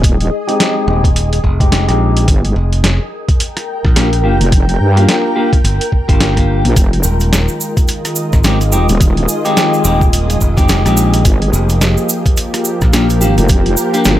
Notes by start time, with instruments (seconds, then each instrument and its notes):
Already playing: wobble bass D#1, ambient pad G#4 D#5
0.04 kick, closed hi-hat
0.20 closed hi-hat
0.48 clean electric guitar G#3 C4 D#4 G4, closed hi-hat
0.60 snare, closed hi-hat
0.87 fingered electric bass D#1, clean electric guitar G#3 C4 D#4 G4
1.04 kick, closed hi-hat
1.16 closed hi-hat
1.33 closed hi-hat
1.44 fingered electric bass F1, kick
1.60 clean electric guitar G#3 C4 D#4 G4, kick, closed hi-hat
1.72 snare, closed hi-hat
1.88 fingered electric bass A#1, clean electric guitar G#3 C4 D#4 G4, cross-stick, closed hi-hat
2.17 closed hi-hat
2.28 wobble bass G1, kick, closed hi-hat
2.45 closed hi-hat
2.52 ambient pad A#4
2.56 fingered electric bass F1, ambient pad G5
2.73 closed hi-hat
2.84 snare, closed hi-hat
3.29 kick, closed hi-hat
3.40 closed hi-hat
3.57 cross-stick, closed hi-hat
3.85 fingered electric bass A#1, kick, cross-stick
3.96 clean electric guitar A#3 D4 F4 G4, snare, closed hi-hat
4.13 closed hi-hat
4.24 clean electric guitar A#3 D4 F4 G4
4.40 wobble bass F1, closed hi-hat
4.52 kick, closed hi-hat
4.69 closed hi-hat
4.80 wobble bass G2
4.96 clean electric guitar A#3 D4 F4 G4, closed hi-hat
5.09 snare, closed hi-hat
5.36 clean electric guitar A#3 D4 F4 G4
5.53 kick, closed hi-hat
5.64 fingered electric bass G1, closed hi-hat
5.81 closed hi-hat
5.92 kick
6.08 fingered electric bass G1, clean electric guitar A#3 D4 F4 G4, kick, closed hi-hat
6.21 snare, closed hi-hat
6.36 clean electric guitar A#3 D4 F4 G4, kick, cross-stick, closed hi-hat
6.65 wobble bass A#1, closed hi-hat
6.76 wobble bass F1, analog synth pad D#3 G#3 F4, kick, closed hi-hat, cabasa
6.93 ambient pad D#5, closed hi-hat
7.03 fingered electric bass D#1, cabasa
7.20 closed hi-hat, cabasa
7.33 snare, closed hi-hat, cabasa
7.48 cabasa
7.61 cabasa
7.77 kick, closed hi-hat, cabasa
7.81 ambient pad G#4
7.88 closed hi-hat, cabasa
8.05 cross-stick, closed hi-hat, cabasa
8.16 cabasa
8.33 fingered electric bass G#1, kick, cross-stick, cabasa
8.44 clean electric guitar G#3 C4 D#4 G4, snare, closed hi-hat, cabasa
8.61 closed hi-hat, cabasa
8.72 clean electric guitar G#3 C4 D#4 G4, cabasa
8.89 wobble bass D#1, closed hi-hat, cabasa
9.01 kick, closed hi-hat, cabasa
9.17 closed hi-hat
9.28 cabasa
9.45 clean electric guitar G#3 C4 D#4 G4, closed hi-hat, cabasa
9.57 snare, closed hi-hat, cabasa
9.74 cabasa
9.84 fingered electric bass D#1, clean electric guitar G#3 C4 D#4 G4, cabasa
10.01 kick, cabasa
10.13 closed hi-hat, cabasa
10.30 closed hi-hat, cabasa
10.41 fingered electric bass F1, kick, cabasa
10.57 clean electric guitar G#3 C4 D#4 G4, kick, closed hi-hat, cabasa
10.69 snare, closed hi-hat, cabasa
10.85 fingered electric bass A#1, clean electric guitar G#3 C4 D#4 G4, cross-stick, closed hi-hat, cabasa
10.97 cabasa
11.14 closed hi-hat, cabasa
11.25 wobble bass G1, analog synth pad F3 A#3 G4, ambient pad F4, kick, closed hi-hat, cabasa
11.42 closed hi-hat
11.53 fingered electric bass F1, cabasa
11.65 ambient pad A#4
11.69 closed hi-hat, cabasa
11.77 ambient pad G5
11.81 snare, closed hi-hat, cabasa
11.98 cabasa
12.09 cabasa
12.26 kick, closed hi-hat, cabasa
12.37 closed hi-hat, cabasa
12.54 cross-stick, closed hi-hat, cabasa
12.65 cabasa
12.81 fingered electric bass A#1, kick, cross-stick, cabasa
12.93 clean electric guitar A#3 D4 F4 G4, snare, closed hi-hat, cabasa
13.10 closed hi-hat, cabasa
13.21 clean electric guitar A#3 D4 F4 G4, cabasa
13.38 wobble bass F1, closed hi-hat, cabasa
13.49 kick, closed hi-hat, cabasa
13.66 closed hi-hat
13.77 cabasa
13.94 clean electric guitar A#3 D4 F4 G4, closed hi-hat, cabasa
14.05 wobble bass G1, snare, closed hi-hat, cabasa